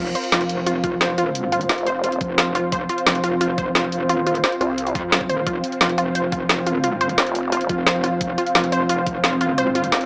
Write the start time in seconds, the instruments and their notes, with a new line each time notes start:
Already playing: analog synth pad C4 F4 C5 F5
0.00 wobble bass F1, ambient pad C4 F4 C5
0.15 synth arpeggio sound C5, closed hi-hat
0.24 closed hi-hat
0.32 wobble bass F1, synth arpeggio sound F4, snare, closed hi-hat
0.41 closed hi-hat
0.49 closed hi-hat
0.67 synth arpeggio sound F4, closed hi-hat
0.84 synth arpeggio sound F4, kick, closed hi-hat
1.01 synth arpeggio sound C5, snare, closed hi-hat
1.18 synth arpeggio sound F4, closed hi-hat
1.35 closed hi-hat
1.52 synth arpeggio sound F4, closed hi-hat
1.61 closed hi-hat
1.69 wobble bass F1, synth arpeggio sound F4, snare, closed hi-hat
1.78 closed hi-hat
1.87 synth arpeggio sound C5, closed hi-hat
2.04 synth arpeggio sound F4, closed hi-hat
2.12 closed hi-hat
2.21 wobble bass F1, kick, closed hi-hat
2.38 synth arpeggio sound F4, snare, closed hi-hat
2.55 synth arpeggio sound F4, closed hi-hat
2.72 wobble bass F1, synth arpeggio sound C5, kick, closed hi-hat
2.89 synth arpeggio sound F4, closed hi-hat
2.98 closed hi-hat
3.07 wobble bass F1, snare, closed hi-hat
3.15 closed hi-hat
3.24 synth arpeggio sound F4, closed hi-hat
3.41 synth arpeggio sound F4, closed hi-hat
3.58 synth arpeggio sound C5, kick, closed hi-hat
3.75 synth arpeggio sound F4, snare, closed hi-hat
3.92 closed hi-hat
4.03 wobble bass E1
4.09 synth arpeggio sound F4, closed hi-hat
4.27 wobble bass D#1, synth arpeggio sound F4, closed hi-hat
4.35 closed hi-hat
4.44 synth arpeggio sound C5, snare, closed hi-hat
4.52 closed hi-hat
4.61 wobble bass C2, synth arpeggio sound F4, closed hi-hat
4.78 closed hi-hat
4.87 closed hi-hat
4.95 wobble bass F2, synth arpeggio sound F4, kick, closed hi-hat
5.12 wobble bass F#1, synth arpeggio sound F4, snare, closed hi-hat
5.21 kick
5.29 wobble bass D#1, synth arpeggio sound C5, closed hi-hat
5.47 wobble bass F1, synth arpeggio sound F4, ambient pad F5, kick, closed hi-hat
5.64 closed hi-hat
5.72 closed hi-hat
5.81 wobble bass F1, synth arpeggio sound F4, snare, closed hi-hat
5.89 closed hi-hat
5.98 synth arpeggio sound F4, closed hi-hat
6.15 synth arpeggio sound C5, closed hi-hat
6.32 synth arpeggio sound F4, kick, closed hi-hat
6.49 snare, closed hi-hat
6.67 synth arpeggio sound F4, closed hi-hat
6.84 synth arpeggio sound F4, closed hi-hat
7.01 synth arpeggio sound C5, closed hi-hat
7.09 closed hi-hat
7.18 wobble bass F1, synth arpeggio sound F4, snare, closed hi-hat
7.27 closed hi-hat
7.35 closed hi-hat
7.52 synth arpeggio sound F4, closed hi-hat
7.61 closed hi-hat
7.69 wobble bass F1, synth arpeggio sound F4, kick, closed hi-hat
7.87 synth arpeggio sound C5, snare, closed hi-hat
8.04 synth arpeggio sound F4, closed hi-hat
8.21 wobble bass F1, kick, closed hi-hat
8.38 synth arpeggio sound F4, closed hi-hat
8.47 closed hi-hat
8.55 wobble bass F1, synth arpeggio sound F4, snare, closed hi-hat
8.64 closed hi-hat
8.72 synth arpeggio sound C5, closed hi-hat
8.89 synth arpeggio sound F4, closed hi-hat
9.07 kick, closed hi-hat
9.24 synth arpeggio sound F4, snare, closed hi-hat
9.41 synth arpeggio sound F4, closed hi-hat
9.58 synth arpeggio sound C5, closed hi-hat
9.75 synth arpeggio sound F4, closed hi-hat
9.84 closed hi-hat
9.92 wobble bass F1, snare, closed hi-hat
10.01 closed hi-hat